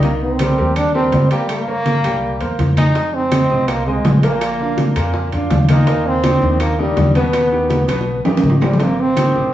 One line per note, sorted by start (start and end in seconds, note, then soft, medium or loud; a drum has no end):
0.00 0.52 C2 medium
0.00 0.33 D#3 medium
0.00 0.33 D#4 medium
0.00 0.33 D#5 medium
0.00 high conga soft
0.00 high timbale medium
0.04 0.12 A#3 medium
0.21 0.79 C4 medium
0.21 high conga soft
0.39 0.55 G3 medium
0.39 0.55 G4 medium
0.39 0.55 A#4 medium
0.39 high conga medium
0.39 high timbale medium
0.39 claves medium
0.58 1.09 D#2 medium
0.58 0.88 G3 medium
0.58 0.88 G4 medium
0.58 0.88 A#4 medium
0.58 high conga soft
0.76 0.95 D4 loud
0.76 high conga soft
0.76 high timbale medium
0.76 claves medium
0.94 1.24 G3 medium
0.94 1.29 C4 medium
0.94 1.25 G4 medium
0.94 1.25 A#4 medium
0.94 high conga soft
1.12 1.98 G2 medium
1.12 high conga medium
1.12 high timbale medium
1.12 low timbale medium
1.31 1.61 G3 medium
1.31 1.49 A#3 medium
1.31 1.61 G4 medium
1.31 1.61 G5 medium
1.31 high conga soft
1.31 high timbale medium
1.49 2.47 A#3 loud
1.49 high conga soft
1.49 high timbale medium
1.49 claves medium
1.67 1.97 A#3 medium
1.67 1.98 A#4 medium
1.67 1.98 C#5 medium
1.67 high conga soft
1.86 high conga medium
1.86 high timbale medium
2.04 2.38 C2 medium
2.04 2.34 G3 medium
2.04 2.34 G4 medium
2.04 2.35 G5 medium
2.04 high timbale medium
2.04 claves medium
2.22 high conga soft
2.40 2.57 E2 medium
2.40 2.70 A#3 medium
2.40 2.71 A#4 medium
2.40 2.71 C5 medium
2.40 high conga soft
2.40 high timbale medium
2.59 3.44 F2 medium
2.59 high conga medium
2.59 high timbale medium
2.59 low timbale medium
2.77 2.92 G#3 medium
2.77 3.16 D#4 loud
2.77 2.92 G#4 medium
2.77 2.93 G#5 medium
2.77 high conga medium
2.77 high timbale medium
2.77 claves medium
2.95 3.25 G#3 medium
2.95 3.25 G#4 medium
2.95 3.26 G#5 medium
2.95 high bongo medium
2.95 high conga soft
2.95 high timbale medium
3.13 3.70 C4 loud
3.13 high conga soft
3.32 3.47 C4 medium
3.32 3.47 C5 medium
3.32 3.47 D#5 medium
3.32 high bongo medium
3.32 high conga medium
3.32 high timbale medium
3.32 claves medium
3.50 4.01 C2 medium
3.50 3.80 C4 medium
3.50 3.80 C5 medium
3.50 3.80 D#5 medium
3.50 high conga soft
3.68 3.86 A#3 loud
3.68 high bongo medium
3.68 high conga soft
3.68 high timbale medium
3.68 claves medium
3.86 4.21 G#3 medium
3.86 4.17 C4 medium
3.86 4.17 C5 medium
3.86 4.17 D#5 medium
3.86 high conga soft
4.05 4.90 A#1 medium
4.05 high bongo medium
4.05 low bongo medium
4.05 high conga medium
4.05 high timbale medium
4.05 low timbale medium
4.23 4.53 A#2 medium
4.23 5.29 A#3 loud
4.23 4.54 A#3 medium
4.23 4.54 A#4 medium
4.23 high conga soft
4.23 high timbale medium
4.41 high bongo medium
4.41 high conga soft
4.41 high timbale medium
4.41 claves medium
4.60 4.90 D3 medium
4.60 4.90 D4 medium
4.60 4.90 F4 medium
4.60 high bongo soft
4.60 high conga soft
4.77 high bongo medium
4.77 high conga medium
4.77 high timbale medium
4.96 5.30 F2 medium
4.96 5.26 A#2 medium
4.96 5.26 A#3 medium
4.96 5.27 A#4 medium
4.96 high bongo soft
4.96 high timbale medium
4.96 claves medium
5.14 high bongo medium
5.14 high conga soft
5.32 5.50 F2 medium
5.32 5.63 D3 medium
5.32 5.63 D4 medium
5.32 5.63 F4 medium
5.32 high conga soft
5.32 high timbale medium
5.50 6.36 D#2 medium
5.50 high bongo medium
5.50 low bongo medium
5.50 high conga medium
5.50 high timbale medium
5.50 low timbale medium
5.69 5.84 A#2 medium
5.69 5.84 A#3 medium
5.69 6.08 D#4 medium
5.69 5.85 A#4 medium
5.69 high bongo soft
5.69 high conga medium
5.69 high timbale medium
5.69 claves medium
5.87 6.17 A#2 medium
5.87 6.17 A#3 medium
5.87 6.18 A#4 medium
5.87 high bongo medium
5.87 high conga soft
5.87 high timbale medium
6.06 6.61 C4 loud
6.06 high conga soft
6.24 6.39 D3 medium
6.24 6.39 D4 medium
6.24 6.39 D#4 medium
6.24 high bongo medium
6.24 high conga medium
6.24 high timbale medium
6.24 claves medium
6.42 6.93 D#2 loud
6.42 6.72 D#3 medium
6.42 6.72 D4 medium
6.42 6.72 D#4 medium
6.42 high conga soft
6.60 6.81 A#3 medium
6.60 high bongo medium
6.60 high conga soft
6.60 high timbale medium
6.60 claves medium
6.79 7.09 D#3 medium
6.79 7.16 G3 medium
6.79 7.09 D4 medium
6.79 7.09 D#4 medium
6.79 high conga soft
6.97 7.83 D#2 medium
6.97 high bongo medium
6.97 low bongo medium
6.97 high conga medium
6.97 high timbale medium
6.97 low timbale medium
7.15 7.45 B2 medium
7.15 7.45 B3 medium
7.15 8.22 B3 medium
7.15 7.46 B4 medium
7.15 high conga soft
7.15 high timbale medium
7.33 high bongo medium
7.33 high conga soft
7.33 high timbale medium
7.33 claves medium
7.52 7.82 D#3 medium
7.52 7.82 D#4 medium
7.52 7.82 G4 medium
7.52 high bongo soft
7.52 high conga soft
7.70 high bongo medium
7.70 high conga medium
7.70 high timbale medium
7.88 8.22 B1 medium
7.88 8.18 B2 medium
7.88 8.18 B3 medium
7.88 8.19 B4 medium
7.88 high bongo medium
7.88 high timbale medium
7.88 claves medium
8.01 high bongo medium
8.07 high conga soft
8.25 8.42 A1 medium
8.25 8.55 D#3 medium
8.25 8.55 D#4 medium
8.25 8.55 G4 medium
8.25 low bongo medium
8.25 high conga soft
8.25 high timbale medium
8.37 low bongo medium
8.37 high timbale medium
8.43 9.29 G#1 medium
8.43 high conga medium
8.50 low timbale medium
8.61 8.76 C3 medium
8.61 8.83 G3 medium
8.61 8.77 C4 medium
8.61 8.77 C5 medium
8.61 low bongo medium
8.61 high conga medium
8.61 low timbale medium
8.61 claves medium
8.73 low bongo medium
8.80 9.10 C3 medium
8.80 9.02 A#3 medium
8.80 9.10 C4 medium
8.80 9.10 C5 medium
8.80 high bongo medium
8.80 high conga soft
8.80 high timbale medium
8.99 9.54 C4 loud
8.99 high conga soft
9.16 9.31 D#3 medium
9.16 9.32 D#4 medium
9.16 9.32 G4 medium
9.16 high bongo medium
9.16 high conga medium
9.16 high timbale medium
9.16 claves medium
9.35 9.54 C2 medium
9.35 9.54 D#3 medium
9.35 9.54 D#4 medium
9.35 9.54 G4 medium
9.35 high conga soft